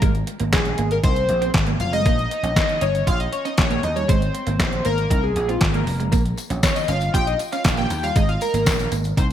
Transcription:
Already playing: analog polysynth A#4
0.02 slap bass G#1, clean electric guitar G#3, kick, closed hi-hat
0.15 closed hi-hat
0.27 muted clean electric guitar stroke, closed hi-hat
0.40 slap bass G#1, clean electric guitar A#3, closed hi-hat
0.53 slap bass A#1, analog polysynth G#4, kick, snare, clap, closed hi-hat
0.65 closed hi-hat
0.78 slap bass G#1, clean electric guitar A#3, closed hi-hat
0.91 analog polysynth A#4, closed hi-hat
1.03 slap bass C2, clean electric guitar D#4, analog polysynth C5, kick, closed hi-hat
1.16 closed hi-hat
1.29 slap bass A#1, muted clean electric guitar stroke, closed hi-hat
1.42 clean electric guitar C4, closed hi-hat
1.54 slap bass G#1, kick, snare, clap, closed hi-hat
1.67 clean electric guitar A#3, closed hi-hat
1.80 slap bass F1, analog polysynth F5, muted clean electric guitar stroke, closed hi-hat
1.93 clean electric guitar G#3, analog polysynth D#5, closed hi-hat
2.06 slap bass A#1, clean electric guitar A#3, kick, closed hi-hat
2.19 closed hi-hat
2.31 muted clean electric guitar stroke, closed hi-hat
2.43 slap bass A#1, clean electric guitar C#4, closed hi-hat
2.56 kick, snare, clap, closed hi-hat
2.69 closed hi-hat
2.81 slap bass G1, clean electric guitar C#4, analog polysynth C#5, closed hi-hat
2.95 closed hi-hat
3.07 slap bass A#1, clean electric guitar F4, analog polysynth F5, kick, closed hi-hat
3.20 analog polysynth D#5, closed hi-hat
3.33 analog polysynth C#5, muted clean electric guitar stroke, closed hi-hat
3.45 clean electric guitar C#4, analog polysynth D#5, closed hi-hat
3.58 slap bass A#1, analog polysynth C#5, kick, snare, clap, closed hi-hat
3.70 clean electric guitar A#3, analog polysynth C#5, closed hi-hat
3.83 slap bass D#2, analog polysynth D#5, muted clean electric guitar stroke, closed hi-hat
3.96 clean electric guitar G3, analog polysynth C#5, closed hi-hat
4.08 slap bass G#1, clean electric guitar G#3, analog polysynth C5, kick, closed hi-hat
4.22 closed hi-hat
4.34 muted clean electric guitar stroke, closed hi-hat
4.47 slap bass G#1, clean electric guitar A#3, closed hi-hat
4.59 slap bass A#1, kick, snare, clap, closed hi-hat
4.73 closed hi-hat
4.85 slap bass G#1, clean electric guitar A#3, analog polysynth A#4, closed hi-hat
4.98 closed hi-hat
5.10 slap bass C2, clean electric guitar D#4, kick, closed hi-hat
5.23 analog polysynth G#4
5.36 slap bass A#1, analog polysynth G#4, muted clean electric guitar stroke, closed hi-hat
5.49 clean electric guitar C4, analog polysynth F4, closed hi-hat
5.61 slap bass G#1, kick, snare, clap, closed hi-hat
5.74 clean electric guitar A#3, analog polysynth A#4, closed hi-hat
5.87 slap bass F1, muted clean electric guitar stroke, open hi-hat
6.00 clean electric guitar G#3, closed hi-hat
6.12 slap bass A#1, clean electric guitar A#3, kick, closed hi-hat, tambourine
6.25 closed hi-hat
6.37 muted clean electric guitar stroke, closed hi-hat, tambourine
6.50 slap bass A#1, clean electric guitar C#4, closed hi-hat, tambourine
6.63 analog polysynth C#5, kick, snare, clap, closed hi-hat, tambourine
6.76 analog polysynth D#5, closed hi-hat, tambourine
6.88 slap bass G1, clean electric guitar C#4, analog polysynth F5, closed hi-hat, tambourine
7.01 closed hi-hat, tambourine
7.14 slap bass A#1, clean electric guitar F4, analog polysynth G5, kick, closed hi-hat
7.27 analog polysynth D#5, closed hi-hat
7.39 muted clean electric guitar stroke, closed hi-hat, tambourine
7.52 clean electric guitar C#4, analog polysynth F5, closed hi-hat, tambourine
7.64 slap bass A#1, kick, snare, clap, closed hi-hat, tambourine
7.77 clean electric guitar A#3, analog polysynth G5, closed hi-hat
7.90 slap bass D#2, muted clean electric guitar stroke, closed hi-hat, tambourine
8.03 clean electric guitar G3, analog polysynth F5, closed hi-hat, tambourine
8.16 slap bass G#1, clean electric guitar G#3, analog polysynth D#5, kick, closed hi-hat, tambourine
8.29 analog polysynth F5, closed hi-hat
8.41 analog polysynth A#4, muted clean electric guitar stroke, closed hi-hat, tambourine
8.54 slap bass G#1, clean electric guitar A#3, closed hi-hat, tambourine
8.66 slap bass A#1, kick, snare, clap, closed hi-hat, tambourine
8.79 closed hi-hat, tambourine
8.92 slap bass G#1, clean electric guitar A#3, closed hi-hat, tambourine
9.04 closed hi-hat, tambourine
9.17 slap bass C2, clean electric guitar D#4, analog polysynth C5, kick, closed hi-hat

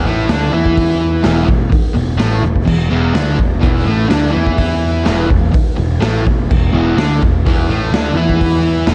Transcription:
0.05 picked electric bass A1, distorted electric guitar A2 A3
0.29 picked electric bass D2, distorted electric guitar D3 D4, snare, open hi-hat
0.53 picked electric bass E2, distorted electric guitar E3 E4
0.66 kick
0.77 kick, open hi-hat
1.23 picked electric bass E1, distorted electric guitar E2 E3, snare, open hi-hat
1.46 picked electric bass E1, distorted electric guitar E2, kick
1.69 muted distorted electric guitar stroke, muted picked electric bass stroke, kick, open hi-hat
1.94 picked electric bass E1, distorted electric guitar E2
2.17 picked electric bass A1, distorted electric guitar A2 A3, snare, open hi-hat
2.43 picked electric bass E1, distorted electric guitar E2
2.56 kick
2.65 picked electric bass E1, distorted electric guitar E2, kick, crash
2.90 picked electric bass E1, distorted electric guitar E2 E3
3.13 picked electric bass D2, distorted electric guitar D3 D4, snare, open hi-hat
3.38 picked electric bass E1, distorted electric guitar E2, kick
3.60 picked electric bass E1, distorted electric guitar E2 E3, kick, open hi-hat
3.84 picked electric bass A1, distorted electric guitar A2 A3
4.08 picked electric bass D2, distorted electric guitar D3 D4, snare, open hi-hat
4.30 distorted electric guitar E3 E4
4.36 picked electric bass E2
4.46 kick
4.58 kick, open hi-hat
5.04 picked electric bass E1, distorted electric guitar E2 E3, snare, open hi-hat
5.27 picked electric bass E1, distorted electric guitar E2, kick
5.51 muted distorted electric guitar stroke, muted picked electric bass stroke, kick, open hi-hat
5.76 picked electric bass E1, distorted electric guitar E2
6.00 picked electric bass A1, distorted electric guitar A2 A3, snare, open hi-hat
6.25 picked electric bass E1, distorted electric guitar E2, kick
6.50 picked electric bass E1, distorted electric guitar E2, kick, crash
6.72 picked electric bass E1, distorted electric guitar E2 E3
6.96 picked electric bass D2, distorted electric guitar D3 D4, snare, open hi-hat
7.22 picked electric bass E1, distorted electric guitar E2, kick
7.46 picked electric bass E1, distorted electric guitar E2 E3, kick, open hi-hat
7.68 picked electric bass A1, distorted electric guitar A2 A3
7.91 picked electric bass D2, distorted electric guitar D3 D4, snare, open hi-hat
8.14 picked electric bass E2, distorted electric guitar E3 E4
8.29 kick
8.41 kick, open hi-hat
8.87 picked electric bass E1, distorted electric guitar E2 E3, snare, open hi-hat

